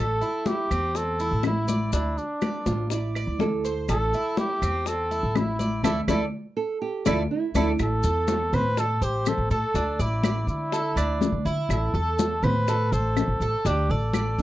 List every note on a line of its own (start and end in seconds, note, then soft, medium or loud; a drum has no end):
0.00 0.20 A1 medium
0.00 0.21 A4 medium
0.00 0.49 A4 loud
0.21 0.69 E4 medium
0.21 high bongo soft
0.21 high conga soft
0.21 maracas soft
0.46 0.98 G4 loud
0.46 high bongo medium
0.46 high conga medium
0.46 maracas soft
0.71 1.29 E2 medium
0.71 1.18 C4 medium
0.71 high bongo soft
0.71 high conga soft
0.71 claves medium
0.71 maracas medium
0.95 1.45 A4 medium
0.95 high bongo medium
0.95 high conga soft
0.95 maracas medium
1.19 1.67 E4 medium
1.19 high conga soft
1.19 maracas soft
1.31 1.90 A1 medium
1.43 1.90 E4 medium
1.43 high bongo medium
1.43 low bongo medium
1.43 high conga medium
1.43 claves medium
1.43 maracas soft
1.68 1.92 D5 medium
1.68 high bongo soft
1.68 high conga medium
1.68 maracas medium
1.93 2.16 D2 medium
1.93 2.40 D4 medium
1.93 2.19 E4 medium
1.93 high bongo medium
1.93 high conga soft
1.93 maracas loud
2.18 2.91 D4 medium
2.18 high bongo soft
2.18 high conga soft
2.18 maracas soft
2.41 2.89 D5 medium
2.41 high bongo soft
2.41 high conga medium
2.41 claves medium
2.41 maracas soft
2.66 3.24 A1 medium
2.66 2.91 F4 medium
2.66 high bongo soft
2.66 high conga medium
2.66 maracas medium
2.90 3.42 E4 medium
2.90 3.15 D5 medium
2.90 high bongo medium
2.90 high conga soft
2.90 maracas medium
3.15 3.63 D5 medium
3.15 high conga soft
3.15 claves medium
3.15 maracas soft
3.27 3.85 D2 medium
3.39 3.74 A4 medium
3.39 high bongo medium
3.39 low bongo medium
3.39 high conga medium
3.39 maracas soft
3.64 3.88 C5 medium
3.64 high bongo soft
3.64 maracas medium
3.89 4.12 A1 medium
3.89 4.35 A4 loud
3.89 4.13 A4 medium
3.89 high bongo medium
3.89 high conga soft
3.89 claves medium
3.89 maracas medium
4.13 4.61 E4 medium
4.13 high bongo soft
4.13 high conga soft
4.13 maracas soft
4.37 4.89 G4 loud
4.37 high bongo medium
4.37 high conga medium
4.37 maracas soft
4.61 5.20 E2 medium
4.61 5.10 C4 medium
4.61 high bongo soft
4.61 high conga soft
4.61 claves medium
4.61 maracas medium
4.86 5.38 A4 medium
4.86 high bongo medium
4.86 high conga soft
4.86 maracas medium
5.11 5.58 E4 medium
5.11 high conga soft
5.11 maracas soft
5.23 5.81 A1 medium
5.35 5.84 E4 medium
5.35 high bongo medium
5.35 low bongo medium
5.35 high conga medium
5.35 claves medium
5.35 maracas soft
5.59 5.83 D5 medium
5.59 high bongo soft
5.59 high conga medium
5.59 maracas medium
5.83 6.02 D2 medium
5.83 5.96 E4 medium
5.83 6.00 E4 loud
5.83 6.00 A4 medium
5.83 6.00 D5 medium
5.83 low bongo loud
5.83 high conga loud
5.83 claves loud
5.83 maracas medium
6.08 6.26 D2 medium
6.08 6.21 E4 medium
6.08 6.24 E4 medium
6.08 6.24 A4 medium
6.08 6.24 D5 medium
6.08 low bongo loud
6.08 high conga medium
6.08 claves loud
6.08 maracas medium
6.57 6.80 A4 loud
6.82 7.07 G4 medium
7.06 7.25 D2 medium
7.06 7.18 E4 medium
7.06 7.22 E4 medium
7.06 7.29 F4 medium
7.06 7.22 A4 medium
7.06 7.22 D5 medium
7.06 low bongo loud
7.06 high conga loud
7.06 claves loud
7.06 maracas medium
7.31 7.76 E4 medium
7.54 7.73 D2 medium
7.54 7.68 E4 medium
7.54 7.71 E4 medium
7.54 7.71 A4 medium
7.54 7.71 D5 medium
7.54 low bongo medium
7.54 high conga loud
7.54 claves medium
7.54 maracas medium
7.79 8.03 A1 loud
7.79 8.56 A4 loud
7.79 high bongo medium
7.79 high conga soft
7.79 claves medium
7.79 maracas medium
8.03 8.50 E2 medium
8.03 8.51 A4 medium
8.03 high bongo soft
8.03 high conga soft
8.03 maracas medium
8.28 high bongo medium
8.28 high conga medium
8.28 maracas medium
8.53 8.99 A2 medium
8.53 8.81 B4 loud
8.53 8.77 C5 medium
8.53 high bongo soft
8.53 low conga medium
8.53 claves medium
8.53 maracas soft
8.77 9.01 A4 medium
8.77 9.05 A4 loud
8.77 high bongo medium
8.77 high conga soft
8.77 maracas medium
9.01 9.36 A1 medium
9.01 9.30 G4 medium
9.01 9.49 C5 medium
9.01 high conga soft
9.01 maracas medium
9.26 9.51 A4 loud
9.26 high bongo soft
9.26 low bongo medium
9.26 high conga soft
9.26 claves medium
9.26 maracas medium
9.38 9.50 A1 medium
9.50 9.62 A2 medium
9.50 9.74 A4 medium
9.50 10.03 A4 loud
9.50 high bongo soft
9.50 maracas soft
9.74 9.98 D2 medium
9.74 9.99 D4 medium
9.74 high bongo medium
9.74 high conga soft
9.74 maracas medium
9.99 10.46 A1 loud
9.99 10.48 E4 medium
9.99 10.23 D5 medium
9.99 high bongo soft
9.99 high conga soft
9.99 maracas medium
10.23 10.71 D5 medium
10.23 high bongo medium
10.23 high conga medium
10.23 claves medium
10.23 maracas medium
10.47 10.94 D3 medium
10.47 11.42 E4 loud
10.47 high bongo soft
10.47 maracas soft
10.72 10.96 A4 medium
10.72 high bongo medium
10.72 high conga soft
10.72 maracas medium
10.96 11.31 D2 medium
10.96 11.44 D4 medium
10.96 high conga soft
10.96 claves medium
10.96 maracas medium
11.21 high bongo soft
11.21 low bongo medium
11.21 high conga medium
11.21 maracas medium
11.32 11.44 D2 medium
11.45 11.57 D3 medium
11.45 11.93 E4 medium
11.45 high bongo soft
11.45 high conga soft
11.45 maracas soft
11.69 11.93 A1 loud
11.69 12.45 A4 loud
11.69 high bongo medium
11.69 high conga soft
11.69 claves medium
11.69 maracas medium
11.94 12.40 E2 loud
11.94 12.42 A4 medium
11.94 high bongo soft
11.94 high conga soft
12.19 high bongo medium
12.19 high conga medium
12.19 maracas medium
12.43 12.89 A2 medium
12.43 12.94 B4 loud
12.43 12.67 C5 medium
12.43 high bongo soft
12.43 low conga medium
12.43 claves medium
12.43 maracas soft
12.67 12.92 A4 medium
12.67 high bongo medium
12.67 high conga soft
12.67 maracas medium
12.92 13.27 A1 medium
12.92 13.68 A4 loud
12.92 13.40 C5 medium
12.92 high conga soft
12.92 maracas medium
13.16 high bongo soft
13.16 low bongo medium
13.16 high conga soft
13.16 claves medium
13.16 maracas medium
13.28 13.40 A1 medium
13.40 13.52 A1 medium
13.40 13.65 A4 medium
13.40 high bongo soft
13.40 maracas soft
13.65 13.88 D2 loud
13.65 13.89 D4 medium
13.65 13.92 G4 medium
13.65 high bongo medium
13.65 high conga soft
13.65 maracas medium
13.90 14.36 A1 medium
13.90 14.42 A4 medium
13.90 14.13 D5 medium
13.90 high bongo soft
13.90 high conga soft
14.13 14.42 D5 medium
14.13 high bongo soft
14.13 high conga medium
14.13 claves medium
14.13 maracas medium
14.38 14.42 D3 medium
14.38 high bongo soft